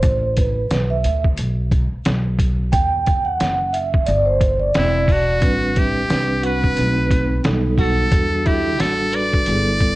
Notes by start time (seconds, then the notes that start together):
Already playing: C5
0.03 A1, kick, closed hi-hat
0.37 B4, kick, closed hi-hat
0.71 B1, snare, closed hi-hat
0.90 E5
1.04 D2, closed hi-hat
1.24 kick
1.38 B1, closed hi-hat
1.71 kick, closed hi-hat
1.93 muted upright bass stroke
2.05 B1, snare, closed hi-hat
2.39 kick, closed hi-hat
2.72 E2 G5, kick, closed hi-hat
3.06 kick, closed hi-hat
3.25 F#5
3.40 F#1, snare, closed hi-hat
3.73 E5, closed hi-hat
3.94 kick
4.06 G1 D5, closed hi-hat
4.25 C5
4.41 kick, closed hi-hat
4.60 D5
4.74 E1 C4 E4, snare, closed hi-hat
5.08 D4, kick, open hi-hat
5.12 F#4
5.40 A1 G3 C4 D4 B4, kick, closed hi-hat
5.76 E4 G4, kick, closed hi-hat
6.08 C2 G3 C4 D4 B4, snare, closed hi-hat
6.43 F#4 B4, closed hi-hat
6.64 kick
6.75 B1 A3 C4 D#4 B4, closed hi-hat
7.11 kick, closed hi-hat
7.43 B1 G3 B3 D#4 A4, snare, closed hi-hat
7.78 F#4 A4, kick, open hi-hat
8.10 E2 G3 D4 F#4 A4, kick, closed hi-hat
8.46 E4 G4, kick, closed hi-hat
8.78 A1 G3 D4 F#4 A4, snare, closed hi-hat
9.12 B4 D5, closed hi-hat
9.33 kick
9.45 G1 G3 B3 E4 G#4, closed hi-hat
9.55 A4
9.80 kick, closed hi-hat